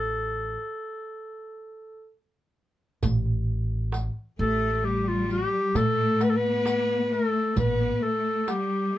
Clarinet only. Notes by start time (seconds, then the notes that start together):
Already playing: A4
4.40 A4
4.85 G4
5.08 F4
5.32 G4
5.76 A4
6.23 B4
6.29 A4
6.36 B4
7.13 A#4
7.27 A4
7.58 B4
8.03 A4
8.50 G4